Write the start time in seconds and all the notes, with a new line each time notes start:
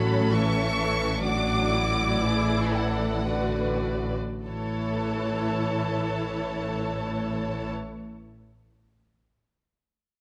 Already playing: A1 A2 F#3 C#4 A4 C#5 B5
0.33 E3 E5 C#6
0.77 E3
1.24 F#3 D4 F#4 D5 D6
1.72 E4
2.21 E3 G#4
2.73 A4 F#5
3.27 D3 F#4 B4 D5
4.47 A1 A2 E3 E4 A4 C#5 A5